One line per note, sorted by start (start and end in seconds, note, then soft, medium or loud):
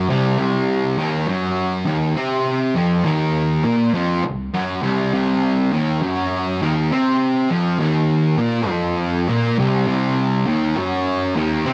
0.09 0.38 C2 medium
0.09 0.38 C3 loud
0.39 0.97 C2 medium
0.39 0.98 C3 loud
0.98 1.27 D#2 medium
0.98 1.27 D#3 loud
1.28 1.86 F#2 medium
1.28 1.86 F#3 loud
1.86 2.16 D#2 loud
1.86 2.16 D#3 loud
2.16 2.75 C3 medium
2.16 2.75 C4 loud
2.75 3.04 F2 medium
2.75 3.05 F3 loud
3.04 3.63 D#2 medium
3.04 3.64 D#3 loud
3.65 3.93 A#2 medium
3.65 3.93 A#3 medium
3.94 4.23 F2 medium
3.94 4.23 F3 loud
4.24 4.48 C2 medium
4.54 4.82 F#2 medium
4.54 4.82 F#3 loud
4.82 5.12 C2 medium
4.82 5.12 C3 medium
5.13 5.72 C2 medium
5.13 5.72 C3 loud
5.72 6.01 D#2 loud
5.72 6.02 D#3 loud
6.02 6.60 F#2 medium
6.02 6.61 F#3 medium
6.62 6.91 D#2 loud
6.62 6.91 D#3 loud
6.91 7.50 C3 medium
6.91 7.50 C4 loud
7.50 7.79 F2 medium
7.50 7.79 F3 loud
7.79 8.38 D#2 medium
7.79 8.38 D#3 loud
8.38 8.68 A#2 medium
8.38 8.69 A#3 medium
8.68 9.27 F2 loud
8.68 9.28 F3 loud
9.29 9.58 A#2 medium
9.29 9.58 A#3 loud
9.59 9.86 C2 medium
9.59 9.87 C3 loud
9.87 10.46 C2 medium
9.87 10.47 C3 loud
10.47 10.76 D#2 loud
10.47 10.76 D#3 loud
10.76 11.35 F#2 medium
10.76 11.36 F#3 loud
11.36 11.65 D#2 medium
11.36 11.66 D#3 loud
11.66 11.73 C3 medium
11.66 11.73 C4 loud